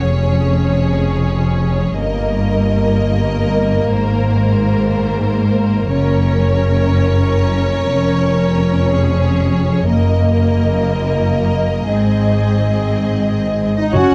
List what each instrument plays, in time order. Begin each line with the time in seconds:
Already playing: violin section C#5
0.00 double bass section F1, cello section F2, viola section C#4, violin section G#4
1.98 double bass section G1, cello section G2, viola section A#3, violin section A#4 D#5
3.95 double bass section G#1, cello section G#2, violin section C5
5.92 double bass section F#1, cello section F#2, viola section C#4, violin section A#4 C#5
7.90 double bass section F1, cello section F2
8.90 violin section G#4
9.89 double bass section F#1, cello section F#2, viola section A#3, violin section A#4 D#5
11.90 double bass section G#1, cello section G#2, viola section C4, violin section G#4
13.76 french horn section D#4, viola section D#4, violin section D#5
13.93 double bass section F#1, cello section F#2, clarinet C#4, viola section F#4, french horn section F#4, oboe C#5, violin section F#5, flute section G#5